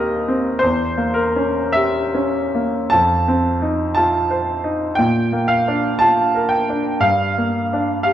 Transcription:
0.00 0.58 D#2 medium
0.00 0.65 A#3 soft
0.00 0.28 C4 soft
0.00 0.15 G4 soft
0.00 0.48 A#4 soft
0.00 0.65 D#5 medium
0.28 0.62 C4 soft
0.59 2.89 E2 medium
0.59 1.15 C5 medium
0.97 1.60 A#3 soft
1.14 1.73 A#4 medium
1.36 1.98 C#4 soft
1.72 2.38 G4 soft
1.72 2.91 E5 medium
2.14 2.78 C#4 soft
2.55 2.93 A#3 soft
2.90 4.96 F2 medium
2.90 3.93 A5 medium
3.28 3.83 C4 soft
3.62 4.17 D#4 soft
3.95 4.51 F4 soft
3.95 4.98 A5 medium
4.31 4.86 C5 soft
4.64 4.99 D#4 soft
4.95 7.00 A#2 medium
4.95 5.49 G5 medium
5.33 5.88 A#3 soft
5.48 6.00 F5 medium
5.68 6.22 D4 soft
5.99 6.56 F4 soft
5.99 6.52 A5 medium
6.35 6.90 A#4 soft
6.49 7.02 G5 medium
6.69 7.04 D4 soft
7.00 8.13 G2 medium
7.00 8.02 F5 medium
7.38 7.93 A#3 soft
7.73 8.13 D4 soft
8.03 8.13 G4 soft
8.03 8.13 F5 medium

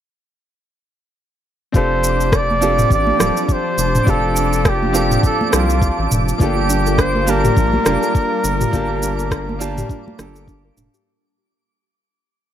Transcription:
1.72 2.85 F1 medium
1.72 6.36 F3 medium
1.72 2.58 C4 medium
1.72 2.58 D4 medium
1.72 6.36 D4 medium
1.72 2.59 F4 medium
1.72 4.05 G4 medium
1.72 2.59 G4 medium
1.72 11.02 A5 medium
1.72 11.08 D6 medium
1.72 kick medium
1.72 shaker soft
1.76 2.60 A4 medium
1.76 2.37 C5 loud
2.04 shaker medium
2.21 shaker soft
2.32 2.92 D5 loud
2.32 kick loud
2.32 cross-stick medium
2.32 shaker soft
2.51 high conga medium
2.61 3.15 C4 medium
2.61 3.17 D4 medium
2.61 3.17 F4 medium
2.61 3.17 G4 medium
2.61 3.17 A4 medium
2.61 shaker medium
2.79 mid tom medium
2.79 shaker soft
2.90 3.12 A1 medium
2.90 3.45 D5 loud
2.90 kick medium
2.90 shaker soft
3.07 high conga medium
3.17 3.32 D1 medium
3.17 4.03 C4 medium
3.17 4.03 D4 medium
3.17 4.04 F4 medium
3.17 4.05 G4 medium
3.17 cross-stick medium
3.17 low conga medium
3.17 shaker medium
3.21 4.05 A4 medium
3.37 shaker soft
3.45 3.54 D5 medium
3.49 4.12 C5 medium
3.49 kick medium
3.49 shaker soft
3.78 4.00 F1 medium
3.78 shaker medium
3.95 mid tom medium
3.95 shaker soft
4.04 5.18 F1 medium
4.04 4.90 C4 medium
4.04 4.91 D4 medium
4.04 4.91 F4 medium
4.04 6.38 F4 medium
4.04 4.92 G4 medium
4.04 kick medium
4.04 shaker soft
4.09 4.92 A4 medium
4.09 4.70 A4 medium
4.36 shaker medium
4.53 shaker soft
4.65 5.25 G4 medium
4.65 kick loud
4.65 cross-stick medium
4.65 shaker soft
4.83 high conga medium
4.93 5.49 C4 medium
4.93 5.49 D4 medium
4.93 5.50 F4 medium
4.93 5.50 G4 medium
4.93 5.50 A4 medium
4.93 shaker medium
5.11 mid tom medium
5.11 shaker soft
5.23 5.57 A4 medium
5.23 kick medium
5.23 shaker soft
5.41 high conga medium
5.50 5.91 C2 medium
5.50 6.36 C4 medium
5.50 6.36 D4 medium
5.50 6.37 F4 medium
5.50 6.38 G4 medium
5.50 cross-stick medium
5.50 low conga medium
5.50 shaker medium
5.55 6.12 F4 medium
5.55 6.38 A4 medium
5.70 shaker soft
5.82 kick loud
5.82 shaker soft
5.99 6.08 A1 loud
6.11 6.33 F1 medium
6.11 mid tom medium
6.11 shaker medium
6.29 shaker soft
6.38 7.51 G1 medium
6.38 11.02 G3 medium
6.38 7.24 A#3 medium
6.38 11.02 A#3 medium
6.38 7.24 D4 medium
6.38 6.55 D4 medium
6.38 7.25 F4 medium
6.38 11.03 F4 medium
6.38 7.25 G4 medium
6.38 kick loud
6.38 shaker soft
6.43 7.02 G4 medium
6.43 7.26 A4 medium
6.57 6.68 G4 medium
6.69 6.84 D4 loud
6.69 shaker medium
6.86 6.98 A4 medium
6.86 shaker soft
6.98 7.14 D4 medium
6.98 7.31 C5 loud
6.98 kick loud
6.98 cross-stick medium
6.98 shaker soft
7.15 7.22 A#4 medium
7.15 high conga medium
7.26 7.82 A#3 medium
7.26 7.83 D4 medium
7.26 7.43 D4 medium
7.26 7.83 F4 medium
7.26 7.83 G4 medium
7.26 10.49 A#4 loud
7.26 7.83 A5 loud
7.26 shaker medium
7.44 7.55 G4 loud
7.44 mid tom medium
7.44 shaker soft
7.57 7.78 A#1 medium
7.57 7.72 D4 medium
7.57 kick loud
7.57 shaker soft
7.73 7.85 G4 medium
7.73 high conga medium
7.83 7.98 F1 medium
7.83 8.69 A#3 medium
7.83 8.70 D4 medium
7.83 8.01 D4 loud
7.83 8.70 F4 medium
7.83 8.71 G4 medium
7.83 cross-stick medium
7.83 low conga medium
7.83 shaker medium
7.88 8.71 A5 medium
8.03 8.14 A4 medium
8.03 shaker soft
8.15 8.31 D4 medium
8.15 kick loud
8.15 shaker soft
8.32 8.39 A#4 medium
8.44 8.66 G1 medium
8.44 8.59 D4 medium
8.44 shaker medium
8.61 8.72 G4 loud
8.61 mid tom medium
8.61 shaker soft
8.71 9.84 G1 loud
8.71 9.57 A#3 medium
8.71 9.57 D4 medium
8.71 8.88 D4 medium
8.71 9.58 F4 medium
8.71 9.58 G4 medium
8.71 kick medium
8.71 shaker soft
8.75 9.59 A5 medium
8.90 9.01 G4 medium
9.02 9.17 D4 medium
9.02 shaker medium
9.19 9.31 A4 medium
9.19 shaker soft
9.31 9.48 D4 medium
9.31 kick loud
9.31 cross-stick medium
9.31 shaker soft
9.49 9.55 A#4 medium
9.49 high conga medium
9.59 10.15 A#3 medium
9.59 10.16 D4 medium
9.59 9.76 D4 medium
9.59 10.16 F4 medium
9.59 10.16 G4 medium
9.59 10.16 A5 loud
9.59 shaker medium
9.78 9.89 G4 loud
9.78 mid tom medium
9.78 shaker soft
9.89 10.05 D4 medium
9.89 kick medium
9.89 shaker soft
10.07 10.18 G4 medium
10.07 high conga medium
10.17 10.71 G1 medium
10.17 11.02 A#3 medium
10.17 11.03 D4 medium
10.17 10.34 D4 loud
10.17 11.03 F4 medium
10.17 11.04 G4 medium
10.17 cross-stick medium
10.17 low conga medium
10.17 shaker medium
10.21 11.04 A4 medium
10.36 10.48 A4 medium
10.36 shaker soft
10.48 10.64 D4 medium
10.48 kick loud
10.48 shaker soft
10.65 10.71 A#4 medium
10.77 10.89 F1 medium
10.77 10.92 D4 medium
10.77 mid tom medium
10.77 shaker medium
10.94 11.05 G4 medium
10.94 shaker soft

